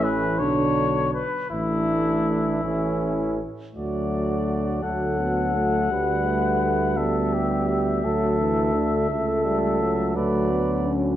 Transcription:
Already playing: A1 E3 A3 C#4
0.04 B4
0.39 B1 D3 D4 C#5
1.14 B4
1.50 A1 E3 A3 D4 E4
2.64 A1 E3 A3 C#4
3.75 D2 F#3 A3 F#4 D5
4.82 D2 F#3 A3 A4 F#5
5.20 B3
5.55 A3
5.90 D2 G3 B4
6.26 A3
6.62 A3
6.97 G3 B3 A4 E5
7.34 G4
7.69 G4
8.04 D2 F#3 A3 A4
8.40 E3
8.75 D3
9.10 C#2 A3 A4
9.45 G3
9.80 F#3
10.16 D2 A3 B4 D5
10.51 B3
10.86 C#4

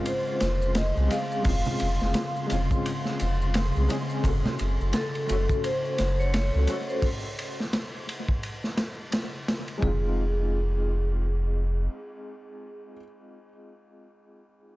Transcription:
Already playing: C#3 G#3 C4 C#4 F4 C6
0.06 C5, ride, maracas
0.27 maracas
0.40 F1, snare, ride, maracas
0.62 maracas
0.75 D#5, snare, ride, maracas
0.94 C2 G#3 C4 C#4 G#4, maracas
1.08 G#3 C4 C#4 G#4 F5, ride, maracas
1.31 maracas
1.42 F1 G#3 C4 C#4, kick, open hi-hat, maracas
1.48 F4
1.66 low conga, maracas
1.79 F1, ride, maracas
2.00 F1, snare, maracas
2.14 snare, ride, maracas
2.36 maracas
2.47 G#3 C4, ride
2.51 F1 C#4 F4, maracas
2.71 kick, maracas
2.86 ride, maracas
3.05 snare, maracas
3.19 F1, ride, maracas
3.41 maracas
3.54 snare, ride, maracas
3.74 C2 G#3 C4 C#4 G#4, maracas
3.88 G#3 C4 C#4 G#4, ride, maracas
4.10 maracas
4.22 F#1 A3 C#4 F#4, kick, ride, maracas
4.28 A4
4.45 snare, low conga, maracas
4.59 F#1, ride, maracas
4.81 F#1, maracas
4.93 A4, snare, ride, maracas
5.14 ride, maracas
5.26 A3 C#4 F#4, ride, maracas
5.30 F#1 A4
5.49 kick, maracas
5.64 C5, ride, maracas
5.85 maracas
5.98 F#1, snare, ride, maracas
6.20 C#5, maracas
6.34 snare, ride, maracas
6.53 C#2 A3 C#4 F#4 A4, maracas
6.67 A3 C#4 F#4 A4, ride, maracas
6.89 C5, maracas
7.02 kick, open hi-hat
7.39 ride
7.60 snare
7.73 snare, ride
8.09 ride
8.29 kick
8.43 ride
8.64 snare
8.77 snare, ride
9.12 snare, ride
9.48 snare, ride
9.68 ride
9.78 G#3 C4
9.82 F1 D#4 G#4, kick, floor tom
9.87 F4

